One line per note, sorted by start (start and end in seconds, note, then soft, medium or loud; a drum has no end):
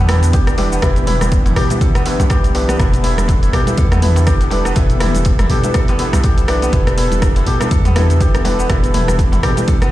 0.00 0.35 E2 medium
0.00 9.92 E3 medium
0.00 0.71 B3 medium
0.00 9.92 B3 medium
0.00 0.30 D4 medium
0.00 9.92 D4 medium
0.00 0.33 G4 medium
0.00 2.78 G4 medium
0.00 1.16 A4 medium
0.09 0.56 B3 medium
0.09 0.56 D4 medium
0.09 0.82 E4 medium
0.09 0.56 E4 medium
0.09 0.56 G4 medium
0.09 0.56 B4 medium
0.09 cross-stick loud
0.09 mid tom medium
0.09 open hi-hat medium
0.23 closed hi-hat soft
0.23 shaker medium
0.33 0.80 E1 medium
0.33 1.56 G4 medium
0.33 kick loud
0.33 closed hi-hat medium
0.33 darbuka tek medium
0.33 shaker medium
0.47 cross-stick medium
0.47 closed hi-hat soft
0.47 shaker soft
0.58 0.80 B3 medium
0.58 0.80 D4 medium
0.58 2.26 D4 medium
0.58 0.80 E4 medium
0.58 0.80 G4 medium
0.58 0.80 B4 loud
0.58 open hi-hat medium
0.58 darbuka ka loud
0.58 darbuka tek medium
0.58 low conga loud
0.72 1.95 B3 medium
0.72 shaker medium
0.82 1.53 E1 loud
0.82 1.67 B3 loud
0.82 1.67 D4 medium
0.82 1.07 E4 medium
0.82 1.67 E4 loud
0.82 1.67 G4 medium
0.82 1.67 B4 loud
0.82 kick loud
0.82 cross-stick medium
0.82 closed hi-hat medium
0.82 darbuka tek medium
0.82 darbuka dum medium
0.82 shaker medium
0.96 closed hi-hat soft
0.96 high conga loud
0.96 shaker soft
1.07 1.45 E4 loud
1.07 mid tom medium
1.07 open hi-hat medium
1.07 high conga loud
1.21 cross-stick medium
1.21 closed hi-hat soft
1.21 high conga medium
1.21 darbuka tek medium
1.21 low conga loud
1.21 shaker medium
1.32 kick loud
1.32 closed hi-hat medium
1.32 shaker medium
1.45 2.05 E4 medium
1.45 closed hi-hat soft
1.45 mid tom medium
1.45 darbuka tek medium
1.45 shaker soft
1.56 1.68 A1 loud
1.56 2.30 G4 medium
1.56 cross-stick loud
1.56 open hi-hat medium
1.56 high conga medium
1.56 darbuka dum medium
1.70 1.87 B3 medium
1.70 1.87 D4 medium
1.70 1.86 E4 medium
1.70 1.86 G4 medium
1.70 1.87 B4 medium
1.70 closed hi-hat soft
1.70 darbuka tek medium
1.70 low conga medium
1.70 shaker medium
1.81 3.13 A4 medium
1.81 kick loud
1.81 closed hi-hat medium
1.81 mid tom medium
1.81 shaker medium
1.95 2.68 B3 medium
1.95 cross-stick medium
1.95 closed hi-hat soft
1.95 shaker soft
2.06 2.52 B3 medium
2.06 2.52 D4 medium
2.06 2.79 E4 medium
2.06 2.52 E4 medium
2.06 2.52 G4 medium
2.06 2.52 B4 medium
2.06 open hi-hat medium
2.06 darbuka ka loud
2.06 high conga medium
2.06 darbuka tek medium
2.20 2.76 B1 loud
2.20 closed hi-hat soft
2.20 darbuka ka loud
2.20 low conga medium
2.20 shaker medium
2.30 3.53 G4 medium
2.30 kick loud
2.30 cross-stick medium
2.30 closed hi-hat medium
2.30 darbuka tek loud
2.30 shaker medium
2.44 closed hi-hat soft
2.44 shaker soft
2.55 2.77 B3 medium
2.55 4.22 D4 medium
2.55 2.77 D4 medium
2.55 2.77 E4 medium
2.55 2.77 G4 medium
2.55 2.77 B4 loud
2.55 open hi-hat medium
2.55 darbuka ka loud
2.55 darbuka tek medium
2.69 3.91 B3 medium
2.69 cross-stick medium
2.69 closed hi-hat soft
2.69 high conga loud
2.69 shaker medium
2.79 3.50 E1 loud
2.79 3.64 B3 loud
2.79 3.64 D4 medium
2.79 3.03 E4 medium
2.79 3.64 E4 medium
2.79 3.64 G4 medium
2.79 9.92 A4 medium
2.79 3.64 B4 loud
2.79 kick loud
2.79 cross-stick medium
2.79 closed hi-hat medium
2.79 darbuka dum medium
2.79 shaker medium
2.93 closed hi-hat soft
2.93 high conga medium
2.93 shaker soft
3.04 3.42 E4 loud
3.04 open hi-hat medium
3.04 darbuka tek medium
3.04 high conga loud
3.17 cross-stick medium
3.17 closed hi-hat soft
3.17 high conga medium
3.17 low conga loud
3.17 shaker medium
3.28 kick loud
3.28 closed hi-hat medium
3.28 darbuka tek medium
3.28 shaker medium
3.42 4.02 E4 medium
3.42 closed hi-hat soft
3.42 shaker soft
3.53 3.65 A1 medium
3.53 4.26 G4 medium
3.53 cross-stick medium
3.53 open hi-hat medium
3.53 high conga medium
3.53 darbuka tek medium
3.53 darbuka dum medium
3.67 3.83 B3 medium
3.67 3.83 D4 medium
3.67 3.83 E4 medium
3.67 3.83 G4 medium
3.67 3.83 B4 medium
3.67 closed hi-hat soft
3.67 low conga medium
3.67 shaker medium
3.77 4.29 E2 medium
3.77 5.10 A4 medium
3.77 kick loud
3.77 closed hi-hat medium
3.77 low conga medium
3.77 shaker medium
3.92 4.65 B3 medium
3.92 cross-stick medium
3.92 closed hi-hat soft
3.92 mid tom medium
3.92 darbuka tek medium
3.92 shaker soft
4.02 4.49 B3 medium
4.02 4.49 D4 medium
4.02 4.75 E4 medium
4.02 4.49 E4 medium
4.02 4.49 G4 medium
4.02 4.49 B4 medium
4.02 mid tom loud
4.02 open hi-hat medium
4.16 closed hi-hat soft
4.16 darbuka tek medium
4.16 shaker medium
4.27 4.73 E1 medium
4.27 5.50 G4 medium
4.27 kick loud
4.27 cross-stick medium
4.27 closed hi-hat medium
4.27 shaker medium
4.41 closed hi-hat soft
4.41 darbuka tek medium
4.41 shaker soft
4.50 4.74 B3 medium
4.50 4.74 D4 medium
4.50 6.20 D4 medium
4.50 4.74 E4 medium
4.50 4.74 G4 medium
4.50 4.74 B4 loud
4.50 open hi-hat medium
4.50 darbuka ka loud
4.50 low conga loud
4.65 5.88 B3 medium
4.65 cross-stick medium
4.65 shaker medium
4.75 5.47 E1 loud
4.75 5.61 B3 loud
4.75 5.61 D4 medium
4.75 5.00 E4 medium
4.75 5.61 E4 medium
4.75 5.61 G4 loud
4.75 5.61 B4 loud
4.75 kick loud
4.75 closed hi-hat medium
4.75 darbuka tek medium
4.75 darbuka dum loud
4.75 shaker medium
4.90 closed hi-hat soft
4.90 high conga medium
4.90 shaker soft
5.00 5.39 E4 loud
5.00 cross-stick medium
5.00 mid tom loud
5.00 open hi-hat medium
5.00 high conga loud
5.00 darbuka tek medium
5.14 closed hi-hat soft
5.14 high conga medium
5.14 low conga loud
5.14 shaker medium
5.25 kick loud
5.25 closed hi-hat medium
5.25 darbuka tek medium
5.25 shaker medium
5.39 5.99 E4 medium
5.39 cross-stick medium
5.39 closed hi-hat soft
5.39 mid tom medium
5.39 shaker soft
5.49 5.61 A1 loud
5.49 6.24 G4 medium
5.49 open hi-hat medium
5.49 high conga medium
5.49 darbuka dum medium
5.64 5.80 B3 medium
5.64 5.80 D4 medium
5.64 5.80 E4 medium
5.64 5.80 G4 medium
5.64 5.80 B4 medium
5.64 closed hi-hat soft
5.64 darbuka tek medium
5.64 low conga medium
5.64 shaker medium
5.74 7.06 A4 medium
5.74 kick loud
5.74 cross-stick medium
5.74 closed hi-hat medium
5.74 mid tom medium
5.74 shaker medium
5.88 6.62 B3 medium
5.88 closed hi-hat soft
5.88 darbuka tek loud
5.88 shaker soft
5.99 6.46 B3 medium
5.99 6.46 D4 medium
5.99 6.46 E4 medium
5.99 6.72 E4 medium
5.99 6.46 G4 medium
5.99 6.46 B4 medium
5.99 open hi-hat medium
5.99 darbuka ka loud
5.99 high conga medium
6.13 6.70 B1 medium
6.13 cross-stick medium
6.13 closed hi-hat soft
6.13 darbuka ka loud
6.13 darbuka tek medium
6.13 low conga medium
6.13 shaker medium
6.24 7.46 G4 medium
6.24 kick loud
6.24 closed hi-hat medium
6.24 shaker medium
6.38 closed hi-hat soft
6.38 shaker soft
6.48 6.71 B3 medium
6.48 8.16 D4 medium
6.48 6.71 D4 medium
6.48 6.71 E4 medium
6.48 6.71 G4 medium
6.48 6.71 B4 loud
6.48 cross-stick medium
6.48 open hi-hat medium
6.48 darbuka ka loud
6.48 darbuka tek medium
6.62 7.85 B3 medium
6.62 closed hi-hat soft
6.62 high conga loud
6.62 shaker medium
6.73 7.44 E1 medium
6.73 7.57 B3 loud
6.73 7.57 D4 medium
6.73 6.97 E4 medium
6.73 7.57 E4 medium
6.73 7.57 G4 medium
6.73 7.57 B4 loud
6.73 kick loud
6.73 closed hi-hat medium
6.73 darbuka tek medium
6.73 darbuka dum medium
6.73 shaker medium
6.87 cross-stick medium
6.87 closed hi-hat soft
6.87 high conga medium
6.87 shaker soft
6.98 7.36 E4 loud
6.98 open hi-hat loud
6.98 darbuka tek medium
6.98 high conga loud
7.11 closed hi-hat soft
7.11 high conga medium
7.11 low conga loud
7.11 shaker medium
7.22 kick loud
7.22 cross-stick medium
7.22 closed hi-hat medium
7.22 shaker medium
7.36 7.96 E4 medium
7.36 closed hi-hat soft
7.36 darbuka tek medium
7.36 shaker soft
7.46 7.58 A1 loud
7.46 8.20 G4 medium
7.46 open hi-hat medium
7.46 high conga medium
7.46 darbuka dum loud
7.61 7.77 B3 medium
7.61 7.77 D4 medium
7.61 7.77 E4 medium
7.61 7.77 G4 medium
7.61 7.77 B4 medium
7.61 cross-stick medium
7.61 closed hi-hat soft
7.61 darbuka tek medium
7.61 low conga medium
7.61 shaker medium
7.71 8.22 E2 medium
7.71 9.03 A4 medium
7.71 kick loud
7.71 closed hi-hat medium
7.71 low conga medium
7.71 shaker medium
7.85 8.58 B3 medium
7.85 closed hi-hat soft
7.85 mid tom medium
7.85 darbuka tek medium
7.85 shaker soft
7.96 8.43 B3 medium
7.96 8.43 D4 medium
7.96 8.43 E4 medium
7.96 8.69 E4 medium
7.96 8.43 G4 medium
7.96 8.43 B4 medium
7.96 cross-stick medium
7.96 mid tom medium
7.96 open hi-hat medium
8.10 closed hi-hat soft
8.10 shaker medium
8.20 8.66 E1 medium
8.20 9.43 G4 medium
8.20 kick loud
8.20 closed hi-hat medium
8.20 darbuka tek medium
8.20 shaker medium
8.35 cross-stick medium
8.35 closed hi-hat soft
8.35 shaker soft
8.45 8.67 B3 medium
8.45 9.92 D4 medium
8.45 8.67 D4 medium
8.45 8.67 E4 medium
8.45 8.67 G4 medium
8.45 8.67 B4 loud
8.45 open hi-hat medium
8.45 darbuka ka loud
8.45 darbuka tek medium
8.45 low conga loud
8.59 9.82 B3 medium
8.59 shaker medium
8.69 9.40 E1 loud
8.69 9.54 B3 loud
8.69 9.54 D4 medium
8.69 9.54 E4 medium
8.69 8.94 E4 medium
8.69 9.54 G4 medium
8.69 9.54 B4 loud
8.69 kick loud
8.69 cross-stick medium
8.69 closed hi-hat medium
8.69 darbuka tek medium
8.69 darbuka dum loud
8.69 shaker medium
8.83 closed hi-hat soft
8.83 high conga medium
8.83 shaker soft
8.94 9.32 E4 loud
8.94 mid tom medium
8.94 open hi-hat loud
8.94 darbuka ka medium
8.94 high conga loud
9.08 cross-stick medium
9.08 closed hi-hat soft
9.08 darbuka tek medium
9.08 high conga medium
9.08 low conga loud
9.08 shaker medium
9.19 kick loud
9.19 closed hi-hat medium
9.19 shaker medium
9.32 9.92 E4 medium
9.32 closed hi-hat soft
9.32 mid tom medium
9.32 darbuka tek medium
9.32 shaker soft
9.43 9.55 A1 medium
9.43 9.92 G4 medium
9.43 cross-stick loud
9.43 open hi-hat medium
9.43 high conga medium
9.43 darbuka dum loud
9.57 9.73 B3 medium
9.57 9.73 D4 medium
9.57 9.73 E4 medium
9.57 9.73 G4 medium
9.57 9.73 B4 medium
9.57 closed hi-hat soft
9.57 darbuka tek medium
9.57 low conga loud
9.57 shaker medium
9.68 9.92 A4 medium
9.68 kick loud
9.68 closed hi-hat medium
9.68 mid tom medium
9.68 shaker medium
9.82 9.92 B3 medium
9.82 cross-stick medium
9.82 closed hi-hat soft
9.82 shaker soft